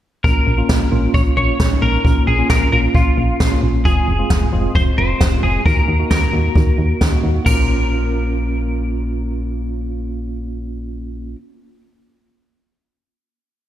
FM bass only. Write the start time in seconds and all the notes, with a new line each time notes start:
0.24 A#1
0.47 A#1
0.69 A#1
0.92 A#1
1.14 A#1
1.37 A#1
1.60 A#1
1.82 A#1
2.05 A#1
2.27 A#1
2.50 A#1
2.72 A#1
2.95 A#1
3.17 A#1
3.40 A#1
3.63 A#1
3.85 F1
4.08 F1
4.30 F1
4.53 F1
4.75 F1
4.98 F1
5.21 F1
5.43 F1
5.66 D#2
5.88 D#2
6.11 D#2
6.33 D#2
6.55 D#2
6.78 D#2
7.01 D#2
7.24 D#2
7.46 A#1